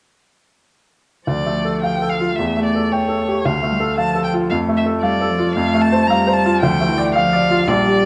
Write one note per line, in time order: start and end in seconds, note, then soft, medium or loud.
1.27 2.34 D2 soft
1.27 2.33 F3 soft
1.27 1.79 D5 soft
1.46 1.75 A3 soft
1.65 1.94 A4 soft
1.83 2.12 F5 soft
1.83 2.11 G5 medium
2.02 2.30 A4 soft
2.09 2.37 F5 soft
2.20 2.38 F4 soft
2.36 3.42 E2 soft
2.36 3.42 A3 soft
2.36 2.64 E5 soft
2.57 2.85 A3 soft
2.64 2.93 D5 soft
2.75 3.03 A4 soft
2.92 3.47 C#5 soft
2.92 3.20 G5 soft
3.08 3.37 A4 soft
3.28 3.45 G4 soft
3.44 4.48 D2 soft
3.44 3.52 A3 soft
3.44 3.98 F5 soft
3.63 3.91 A3 soft
3.71 3.79 G3 soft
3.80 4.08 A4 soft
3.97 4.52 F3 soft
3.97 4.26 F5 soft
3.97 4.23 A5 medium
4.15 4.43 A4 soft
4.24 4.32 G5 medium
4.33 4.51 F4 soft
4.50 5.53 F2 soft
4.50 5.04 A3 soft
4.50 4.58 F5 soft
4.69 4.96 A3 soft
4.77 4.85 E5 soft
4.86 5.13 A4 soft
5.02 5.31 G3 soft
5.02 5.54 D5 medium
5.02 5.31 F5 soft
5.21 5.49 A4 soft
5.29 5.56 F3 soft
5.39 5.56 F4 soft
5.55 6.58 F2 soft
5.55 6.08 A3 soft
5.55 5.83 F5 medium
5.74 6.02 A3 soft
5.82 6.09 A5 medium
5.92 6.20 C5 soft
6.07 6.63 G3 soft
6.07 6.37 F5 soft
6.07 6.35 A#5 medium
6.27 6.55 C5 soft
6.33 6.60 A5 medium
6.46 6.62 F4 soft
6.61 7.65 D2 soft
6.61 6.89 F3 soft
6.61 7.13 G5 medium
6.81 7.08 A3 soft
6.87 7.14 E3 medium
6.98 7.25 D5 soft
7.15 7.67 F3 soft
7.15 7.69 F5 medium
7.15 7.43 F5 soft
7.33 7.61 D5 soft
7.50 7.68 F4 soft
7.67 8.05 A#1 medium
7.67 8.05 G3 soft
7.67 8.05 D5 medium
7.86 8.05 G3 soft